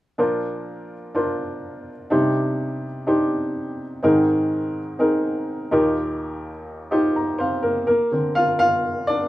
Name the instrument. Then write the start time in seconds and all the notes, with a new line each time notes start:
upright piano
0.18 A#2 F3 D4 F4 A#4 C5
1.15 D4 F4 A#4 C5
2.10 C3 G3 D4 D#4 G4 C5
3.07 D4 D#4 G4 C5
4.03 G#2 D#3 C4 D#4 G#4 A#4
4.99 C4 D#4 G#4 A#4
5.71 D#2 A#2 D#4 F4 G4 A#4
6.91 D#4 F4 G4 C5
7.16 A#5
7.38 C4 C5 F5
7.63 A#3 A#4
7.87 A#3 A#4
8.12 D3 A#3 C4
8.35 F4 F5
8.59 F4 F5
9.07 D4 D5